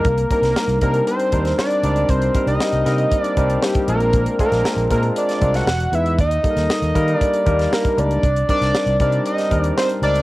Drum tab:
HH |xxxx-xxxxxxx-xxx|xxxx-xxxxxxx-xxx|xxxx-xxxxxxx-xxx|xxxx-xxxxxxx-xxx|
SD |---oo------oo---|----o-o-----o---|---oo----o-oo---|---oo------oo---|
BD |o-o---o---o-----|o-o-----o-o--o--|o-o---o---o-----|o-o---o-o-o--o--|

HH |xxxx-xxxxxxx-xxx|
SD |---oo----o--o---|
BD |o-o---o---o-----|